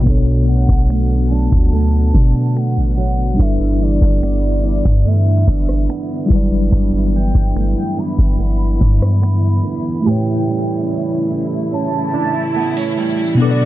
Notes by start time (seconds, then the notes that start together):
Already playing: G3 C#4
0.01 B2 B3
0.06 B1 B2 D3 F#3 A3 B3 D4 F#4 A4, kick, closed hi-hat
0.11 C#5
0.47 F#3 F#5, closed hi-hat
0.68 B1, kick
0.89 A3, finger snap, closed hi-hat
1.25 G#5
1.30 D4 A5, closed hi-hat
1.52 D2, kick
1.72 A3 A5, closed hi-hat
2.13 B2 D4, kick, closed hi-hat
2.55 A3 F#5, finger snap, closed hi-hat
2.77 A1
2.97 F#3, closed hi-hat
3.34 G3 D4
3.38 G1 G2 E3 B3 D4 E4 A4 E5, kick, closed hi-hat
3.44 B4
3.80 E3 D5, closed hi-hat
4.01 G1, kick
4.22 B3 D5, finger snap, closed hi-hat
4.63 D4, closed hi-hat
4.85 G2, kick
5.05 A3 E5, closed hi-hat
5.26 B3
5.47 G1 D4, kick, closed hi-hat
5.69 cross-stick
5.88 B3, finger snap, closed hi-hat
6.26 G3 E4
6.30 G1 G2 F#3 E4 B4, kick, closed hi-hat
6.35 D5
6.72 G1 G2 D4, kick, closed hi-hat
7.13 E3 G5, closed hi-hat
7.34 G1, kick
7.55 A3, finger snap, closed hi-hat
7.76 B3
7.97 D4 B5, closed hi-hat
8.18 G1, kick
8.39 B3, closed hi-hat
8.80 G2 D4, kick, closed hi-hat
9.02 cross-stick
9.22 B3 B5, finger snap, closed hi-hat
9.64 E3, closed hi-hat
10.01 A2 A3 E4
10.06 C#3 A3 E4 G4 B4 G5
10.11 C#5
10.47 G3
10.89 C#4
11.30 E4
11.72 C#4 A5
12.14 D4
12.35 E4
12.56 B3
12.77 C#4
12.97 G3
13.35 B2 B3
13.39 D3 F#3 A3 B3 D4 F#4 A4 D5
13.44 B4
13.51 D5